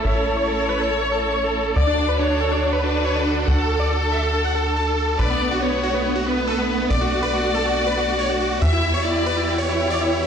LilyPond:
<<
  \new Staff \with { instrumentName = "Violin section" } { \time 4/4 \key b \minor \tempo 4 = 140 cis''1 | d''4 cis''4. b'4. | a'1 | d''4 cis''4. b'4. |
d''1 | e''4 d''4. cis''4. | }
  \new Staff \with { instrumentName = "Supersaw synth" } { \time 4/4 \key b \minor e''16 a'16 a'16 cis''16 a'16 a'16 b'16 a'16 a'16 cis''16 a'16 a'16 cis''16 a'16 a'16 a'16 | d''16 d'16 d'16 b'16 d'16 d'16 a'16 d'16 d'16 b'16 d'16 d'16 cis''16 d'16 d'16 d'16 | fis''16 a'16 a'16 d''16 a'16 a'16 e''16 a'16 a'16 fis''16 a'16 a'16 a''16 a'16 a'16 a'16 | b'16 b16 b16 fis'16 b16 b16 fis'16 b16 b16 fis'16 b16 b16 a'16 b16 b16 b16 |
d''16 fis'16 fis'16 b'16 fis'16 fis'16 a'16 fis'16 fis'16 b'16 fis'16 fis'16 cis''16 fis'16 fis'16 fis'16 | e''16 e'16 e'16 cis''16 e'16 e'16 b'16 e'16 e'16 cis''16 e'16 e'16 d''16 e'16 e'16 e'16 | }
  \new Staff \with { instrumentName = "String section" } { \time 4/4 \key b \minor <a cis' e'>1 | <d d' fis' a'>1~ | <d d' fis' a'>1 | <a b>1~ |
<a b>1 | <e b fis' g'>1 | }
  \new Staff \with { instrumentName = "Analog synth bass" } { \clef bass \time 4/4 \key b \minor a,,1 | d,1 | d,1 | b,,1 |
b,,1 | e,1 | }
  \new DrumStaff \with { instrumentName = "Drums" } \drummode { \time 4/4 r4 r4 r4 r4 | r4 r4 r4 r4 | r4 r4 r4 r4 | r4 r4 hh8 hh8 r8 hh16 hh16 |
r4 r4 r4 r4 | hh4 r4 hh4 r4 | }
>>